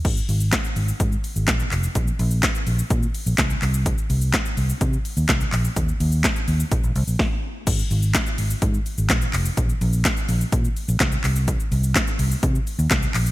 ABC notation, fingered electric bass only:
X:1
M:4/4
L:1/16
Q:1/4=126
K:Bbmix
V:1 name="Fingered electric bass" clef=bass
A,,,2 A,,,3 z A,,,2 A,,2 z A,,, B,,,2 F,,,2 | B,,,2 B,,,3 z B,,,2 B,,2 z B,,, C,,2 C,,2- | C,,2 C,,3 z C,,2 C,2 z E,, z2 B,,,2 | E,,2 E,,3 z E,,2 B,,, B,,, C,, B,,, z4 |
A,,,2 A,,,3 z A,,,2 A,,2 z A,,, B,,,2 F,,,2 | B,,,2 B,,,3 z B,,,2 B,,2 z B,,, C,,2 C,,2- | C,,2 C,,3 z C,,2 C,2 z E,, z2 B,,,2 |]